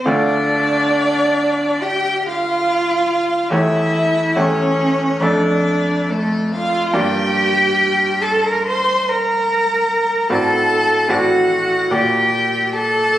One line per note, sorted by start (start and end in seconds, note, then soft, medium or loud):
0.00 0.11 C4 medium
0.06 3.48 D2 medium
0.06 3.48 A3 medium
0.06 1.83 D4 loud
0.06 3.48 F4 medium
0.06 1.84 D5 loud
0.06 3.49 D5 medium
1.82 2.27 G4 loud
1.82 2.28 G5 loud
2.26 3.52 F4 loud
2.26 3.50 F5 medium
3.50 4.33 E2 medium
3.50 4.34 A3 medium
3.50 4.40 E4 loud
3.50 4.34 G4 medium
3.50 4.34 C#5 medium
3.50 4.37 E5 loud
4.36 5.19 E2 medium
4.36 5.19 A3 medium
4.36 5.24 C#4 loud
4.36 5.19 G4 medium
4.36 5.21 C#5 loud
4.36 5.19 C#5 medium
5.20 6.90 F2 medium
5.20 6.91 A3 medium
5.20 6.11 D4 loud
5.20 6.91 A4 medium
5.20 6.11 D5 loud
5.20 6.91 D5 medium
6.10 6.56 A3 loud
6.10 6.54 A4 medium
6.52 6.98 F4 loud
6.52 6.92 F5 medium
6.93 10.25 G2 medium
6.93 10.25 A#3 medium
6.93 10.26 G4 medium
6.93 10.26 D5 medium
6.93 8.23 G5 loud
6.97 8.24 G4 loud
8.21 8.47 A4 loud
8.21 8.45 A5 medium
8.43 8.66 A#4 loud
8.43 8.64 A#5 medium
8.64 9.10 C5 loud
8.64 9.09 C6 loud
9.08 10.31 A#4 loud
9.08 10.29 A#5 loud
10.30 11.07 A2 medium
10.30 11.07 C4 medium
10.30 11.08 F#4 medium
10.30 11.13 A4 loud
10.30 11.08 D5 medium
10.30 11.12 A5 loud
11.08 11.89 A2 medium
11.08 11.89 C4 medium
11.08 11.89 F#4 medium
11.08 11.93 F#4 loud
11.08 11.90 D5 medium
11.08 11.92 F#5 loud
11.90 13.19 A#2 medium
11.90 13.19 A#3 medium
11.90 13.19 G4 medium
11.90 12.74 G4 loud
11.90 13.19 D5 medium
11.90 12.74 G5 loud
12.72 13.19 A4 loud
12.72 13.19 A5 loud